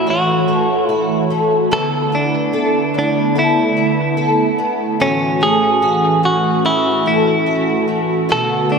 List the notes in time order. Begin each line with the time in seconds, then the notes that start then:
Already playing: A2 E3 A3 C#4 F#4 C#5
0.07 F#4
0.48 A3
0.89 E4 F#4
1.30 A3
1.71 D3 E3 B3 E4 A4
2.12 B3 D4
2.53 A4
2.94 D4
2.99 D4
3.36 E4 A4
3.77 B3
4.17 A4
4.58 B3
4.99 A2 E3 C#4 F#4
5.41 A3 G#4
5.82 F#4
6.23 C#4 F#4
6.65 E4 F#4
7.06 A3 E4
7.46 F#4
7.88 A3
8.28 B2 D3 A3 B3 F#4
8.32 A4
8.69 A3 D4